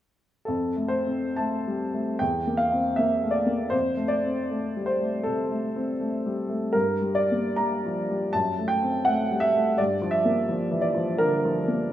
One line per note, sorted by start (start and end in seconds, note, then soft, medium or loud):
0.45 2.16 F2 soft
0.45 0.90 A4 medium
0.76 1.25 A3 soft
0.88 1.36 C5 medium
1.07 1.55 C4 soft
1.36 1.84 A3 soft
1.36 2.20 A5 medium
1.67 1.94 G3 soft
1.94 2.21 A3 soft
2.19 3.69 E2 soft
2.19 2.59 G5 medium
2.47 2.88 A#3 soft
2.57 2.97 F5 medium
2.72 3.13 C4 soft
2.96 3.38 A#3 soft
2.96 3.35 E5 medium
3.23 3.48 A3 soft
3.31 3.71 D5 medium
3.46 3.72 A#3 soft
3.70 5.22 F2 soft
3.70 4.09 C5 medium
3.97 4.38 A3 soft
4.08 4.87 D5 medium
4.24 4.65 C4 soft
4.50 4.92 A3 soft
4.76 5.02 G3 soft
4.86 5.26 C5 medium
5.01 5.42 A3 soft
5.23 5.66 C3 soft
5.23 6.73 A4 medium
5.51 5.90 A3 soft
5.76 6.15 C4 soft
6.01 6.39 A3 soft
6.26 6.50 G3 soft
6.49 6.74 A3 soft
6.73 8.30 G2 soft
6.73 7.15 A#4 medium
7.02 7.47 G3 soft
7.15 7.57 D5 medium
7.32 7.74 A#3 soft
7.56 7.99 G3 soft
7.56 8.33 A#5 medium
7.86 8.10 F3 soft
8.10 8.34 G3 soft
8.33 9.75 F#2 soft
8.33 8.70 A5 medium
8.59 8.97 A3 soft
8.68 9.05 G5 medium
8.82 9.20 C4 soft
9.05 9.45 A3 soft
9.05 9.41 F#5 medium
9.31 9.55 G3 soft
9.40 9.77 E5 medium
9.56 9.79 A3 soft
9.78 11.17 G2 soft
9.78 10.14 D5 medium
10.02 10.40 F3 soft
10.11 10.83 E5 medium
10.25 10.63 A#3 soft
10.49 10.87 F3 soft
10.71 10.96 E3 soft
10.81 11.18 D5 medium
10.95 11.33 F3 soft
11.18 11.58 D3 soft
11.18 11.93 A#4 medium
11.45 11.82 F3 soft
11.68 11.93 A#3 soft